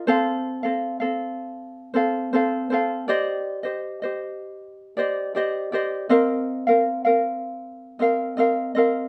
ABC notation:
X:1
M:4/4
L:1/16
Q:1/4=79
K:Fmix
V:1 name="Ukulele"
[CAcf]3 [CAf]2 [CAf]4- [CAf] [CAcf]2 [CAcf]2 [CAcf]2 | [Gcde]3 [Gce]2 [Gce]4- [Gce] [Gcde]2 [Gcde]2 [Gcde]2 | [CBef]3 [CBf]2 [CBf]4- [CBf] [CBef]2 [CBef]2 [CBef]2 |]